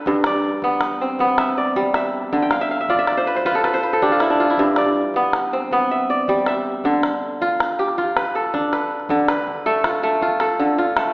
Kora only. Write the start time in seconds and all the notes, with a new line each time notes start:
Already playing: D3 D4 F4 G4 A4 B4
0.07 G2
0.26 D5
0.64 B3
1.01 C4
1.20 B3
1.39 E5
1.58 D5
1.76 G3
1.95 E5
2.33 D3
2.42 G5
2.52 F5
2.61 E5
2.71 F5
2.81 E5
2.90 F4 D5
2.99 E5
3.08 D5
3.17 C5
3.27 B4
3.36 C5
3.46 F4 B4
3.55 A4
3.65 B4
3.74 C5
3.83 B4
3.93 A4
4.02 D4 G4
4.12 F4
4.21 E4
4.30 D4
4.40 F4
4.50 E4
4.59 G2
4.78 D5
5.16 B3
5.53 C4
5.73 B3
5.91 E5
6.10 D5
6.29 G3
6.48 E5
6.85 D3
7.42 F4
7.79 G4
7.98 F4
8.17 B4
8.35 A4
8.54 D4
8.73 B4
9.10 D3
9.29 B4
9.66 A3 A4
9.84 F4
10.03 A3
10.22 F4
10.41 A4
10.60 D3
10.78 F4
10.97 A3